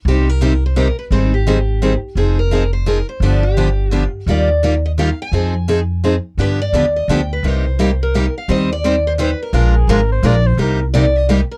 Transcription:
0.05 upright bass C2, steel-string acoustic guitar C3 G3 C4 D#4 G4
0.29 steel-string acoustic guitar A#4
0.41 steel-string acoustic guitar C3 G3 C4 D#4 G4
0.66 steel-string acoustic guitar C5
0.76 steel-string acoustic guitar C3 G3 C4 D#4 G4 A#4
0.99 steel-string acoustic guitar B4
1.11 upright bass G#1, steel-string acoustic guitar D#3 G3 C4 D#4 G#4 C5
1.34 steel-string acoustic guitar G4
1.47 steel-string acoustic guitar D#3 G3 C4 D#4 G#4
1.82 steel-string acoustic guitar D#3 G3 C4 D#4 G#4
2.15 upright bass F1, steel-string acoustic guitar F3 C4 D#4 G#4
2.39 steel-string acoustic guitar A#4
2.51 steel-string acoustic guitar F3 C4 D#4 G#4
2.73 steel-string acoustic guitar C5
2.86 steel-string acoustic guitar F3 C4 D#4 G#4 A#4
3.09 steel-string acoustic guitar C5
3.20 upright bass G1, steel-string acoustic guitar D3 F3 B3 D4 G4 D5
3.43 steel-string acoustic guitar G4
3.57 steel-string acoustic guitar D3 F3 B3 D4 G4
3.91 steel-string acoustic guitar D3 F3 B3 D4 F4 G4
4.26 upright bass D#2, steel-string acoustic guitar D#3 G3 A#3 F4 G4 D5
4.63 steel-string acoustic guitar D#3 G3 A#3 F4 G4
4.86 steel-string acoustic guitar D#5
4.98 steel-string acoustic guitar D#3 G3 A#3 F4 G4 F5
5.22 steel-string acoustic guitar G#5
5.32 upright bass F2, steel-string acoustic guitar F3 C4 D#4 G#4
5.68 steel-string acoustic guitar F3 C4 D#4 G#4
6.04 steel-string acoustic guitar F3 C4 D#4 G#4
6.38 upright bass G2, steel-string acoustic guitar D3 F3 B3 D4 G4 B4
6.62 steel-string acoustic guitar D5
6.73 upright bass D#2, steel-string acoustic guitar D3 F3 B3 D4 G4
6.96 steel-string acoustic guitar D#5
7.08 upright bass D2, steel-string acoustic guitar D3 F3 B3 D4 G4 G5
7.33 steel-string acoustic guitar B4
7.43 upright bass C2, steel-string acoustic guitar C3 G3 A#3 D#4 G4
7.48 steel-string acoustic guitar C5
7.79 steel-string acoustic guitar C3 G3 A#3 D#4 G4
8.03 steel-string acoustic guitar A#4
8.14 steel-string acoustic guitar C3 G3 A#3 D#4 G4
8.38 steel-string acoustic guitar F5
8.48 upright bass D#2, steel-string acoustic guitar D#3 G3 C4 G4 C5 D#5
8.73 steel-string acoustic guitar D5
8.84 steel-string acoustic guitar D#3 G3 C4 G4 C5
9.07 steel-string acoustic guitar C5
9.18 steel-string acoustic guitar D#3 G3 C4 G4 B4 C5
9.43 steel-string acoustic guitar A#4
9.53 upright bass A#1, steel-string acoustic guitar F3 G#3 D4 F4 A#4
9.70 soprano saxophone A#4
9.76 soprano saxophone G#4
9.87 upright bass G#1, steel-string acoustic guitar F3 G#3 D4 F4 A#4, soprano saxophone A#4
10.12 soprano saxophone C5
10.23 upright bass A#1, steel-string acoustic guitar F3 G#3 D4 F4 A#4, soprano saxophone D5
10.47 soprano saxophone C5
10.57 upright bass C2, steel-string acoustic guitar C3 G3 A#3 D#4 G4, soprano saxophone A#4
10.94 steel-string acoustic guitar C3 G3 A#3 D#4 G4 D5
11.16 steel-string acoustic guitar D#5
11.29 steel-string acoustic guitar C3 G3 A#3 D#4 G4 F5
11.51 steel-string acoustic guitar A#4

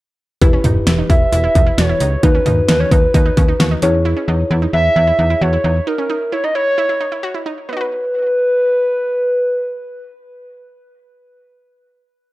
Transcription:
0.42 fm bass E1, synth keys E4 G4 B4, synth arpeggio sound E4, kick, closed hi-hat
0.53 synth arpeggio sound C#4
0.64 fm bass E1, synth arpeggio sound D#4, closed hi-hat, mid tom
0.87 fm bass E1, synth arpeggio sound E4, snare, closed hi-hat
0.98 synth arpeggio sound D#4
1.10 fm bass E1, synth arpeggio sound E4, soft synth lead E5, kick, closed hi-hat
1.32 fm bass E1, synth arpeggio sound E4, closed hi-hat
1.44 synth arpeggio sound E4
1.55 fm bass E1, synth arpeggio sound D#4, kick, closed hi-hat
1.67 synth arpeggio sound E4
1.78 fm bass E1, synth arpeggio sound F#4, soft synth lead C#5, snare, closed hi-hat
1.89 synth arpeggio sound E4
2.00 fm bass C#2, synth arpeggio sound D#4, closed hi-hat
2.23 fm bass D#2, synth arpeggio sound D#4, synth keys D#4 F#4 B4, soft synth lead B4, kick, closed hi-hat
2.35 synth arpeggio sound C#4
2.46 fm bass D#2, synth arpeggio sound D#4, closed hi-hat, mid tom
2.68 fm bass D#2, synth arpeggio sound D#4, soft synth lead B4, snare, closed hi-hat
2.80 synth arpeggio sound C#4, soft synth lead C#5
2.91 fm bass D#2, synth arpeggio sound D#4, soft synth lead B4, kick, closed hi-hat
3.14 fm bass D#2, synth arpeggio sound D#4, kick, closed hi-hat
3.26 synth arpeggio sound D#4
3.37 fm bass D#2, synth arpeggio sound C#4, kick, closed hi-hat
3.48 synth arpeggio sound D#4
3.60 fm bass D#2, synth arpeggio sound F#4, snare, closed hi-hat
3.71 synth arpeggio sound D#4
3.82 fm bass E2, synth arpeggio sound C#4, synth keys E4 G#4 C#5, closed hi-hat
4.05 synth arpeggio sound E4
4.17 synth arpeggio sound C#4
4.28 fm bass E2, synth arpeggio sound D#4
4.51 fm bass E2, synth arpeggio sound E4
4.62 synth arpeggio sound D#4
4.73 fm bass E2, synth arpeggio sound E4, soft synth lead E5
4.96 fm bass E2, synth arpeggio sound E4
5.07 synth arpeggio sound E4
5.19 fm bass E2, synth arpeggio sound D#4
5.30 synth arpeggio sound E4
5.41 fm bass E2, synth arpeggio sound F#4, soft synth lead C#5
5.53 synth arpeggio sound E4
5.64 fm bass E2, synth arpeggio sound D#4
5.87 synth arpeggio sound D#4, soft synth lead A#4
5.98 synth arpeggio sound C#4
6.10 synth arpeggio sound D#4
6.32 synth arpeggio sound E4, soft synth lead C#5
6.44 synth arpeggio sound D#4, soft synth lead D#5
6.55 synth arpeggio sound E4, soft synth lead C#5
6.78 synth arpeggio sound E4
6.89 synth arpeggio sound E4
7.00 synth arpeggio sound D#4
7.12 synth arpeggio sound E4
7.23 synth arpeggio sound F#4
7.34 synth arpeggio sound E4
7.46 synth arpeggio sound D#4
7.69 synth arpeggio sound B3, soft synth lead B4
7.73 synth arpeggio sound D#4
7.77 synth arpeggio sound F#4
7.81 synth arpeggio sound B4

